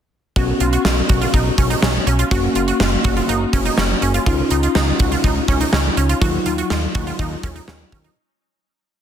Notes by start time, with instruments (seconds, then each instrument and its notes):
0.36 analog synth bass B1, tine electric piano B3 C#4 F#4, synth arpeggio sound F#4, kick, closed hi-hat
0.60 analog synth bass B1, synth arpeggio sound F4, closed hi-hat
0.73 synth arpeggio sound F#4, closed hi-hat
0.85 analog synth bass B1, synth arpeggio sound F4, snare
1.09 analog synth bass B1, synth arpeggio sound F#4, kick, closed hi-hat
1.21 synth arpeggio sound F4, closed hi-hat
1.34 analog synth bass B1, synth arpeggio sound D#4, kick, closed hi-hat
1.58 analog synth bass B1, synth arpeggio sound C#4, kick, closed hi-hat
1.70 synth arpeggio sound D#4, closed hi-hat
1.82 analog synth bass B1, synth arpeggio sound C#4, snare
2.07 analog synth bass B1, synth arpeggio sound C#4, closed hi-hat
2.19 synth arpeggio sound F4, closed hi-hat
2.31 analog synth bass F#1, tine electric piano A#3 C#4 F#4, synth arpeggio sound F#4, kick, closed hi-hat
2.55 analog synth bass F#1, synth arpeggio sound F4, closed hi-hat
2.68 synth arpeggio sound F#4, closed hi-hat
2.80 analog synth bass F#1, synth arpeggio sound F4, snare
3.04 analog synth bass F#1, synth arpeggio sound F#4, kick, closed hi-hat
3.17 synth arpeggio sound F4, closed hi-hat
3.29 analog synth bass F#1, synth arpeggio sound D#4, closed hi-hat
3.53 analog synth bass F#1, synth arpeggio sound C#4, kick, closed hi-hat
3.65 synth arpeggio sound D#4, closed hi-hat
3.78 analog synth bass F#1, synth arpeggio sound C#4, snare
4.02 analog synth bass F#1, synth arpeggio sound C#4, closed hi-hat
4.14 synth arpeggio sound F4, closed hi-hat
4.26 analog synth bass C#2, tine electric piano C#4 D#4 F4, synth arpeggio sound F4, kick, closed hi-hat
4.51 analog synth bass C#2, synth arpeggio sound D#4, closed hi-hat
4.63 synth arpeggio sound F4, closed hi-hat
4.75 analog synth bass C#2, synth arpeggio sound D#4, snare
4.99 analog synth bass C#2, synth arpeggio sound F#4, kick, closed hi-hat
5.12 synth arpeggio sound F4, closed hi-hat
5.24 analog synth bass C#2, synth arpeggio sound D#4, kick, closed hi-hat
5.48 analog synth bass C#2, synth arpeggio sound C#4, kick, closed hi-hat
5.61 synth arpeggio sound D#4, closed hi-hat
5.73 analog synth bass C#2, synth arpeggio sound C#4, snare
5.97 analog synth bass C#2, synth arpeggio sound C#4, closed hi-hat
6.09 synth arpeggio sound F4, closed hi-hat
6.22 analog synth bass D#2, tine electric piano F#3 D#4 F4, synth arpeggio sound F#4, kick, closed hi-hat
6.46 analog synth bass D#2, synth arpeggio sound F4, closed hi-hat
6.58 synth arpeggio sound F#4, closed hi-hat
6.70 analog synth bass D#2, synth arpeggio sound F4, snare
6.95 analog synth bass D#2, synth arpeggio sound F#4, kick, closed hi-hat
7.07 synth arpeggio sound F4, closed hi-hat
7.19 analog synth bass D#2, synth arpeggio sound D#4, kick, closed hi-hat
7.43 analog synth bass D#2, synth arpeggio sound C#4, kick, closed hi-hat
7.56 synth arpeggio sound D#4, closed hi-hat
7.68 analog synth bass D#2, synth arpeggio sound C#4, snare
7.92 analog synth bass D#2, synth arpeggio sound C#4, kick, closed hi-hat
8.04 synth arpeggio sound D#4, closed hi-hat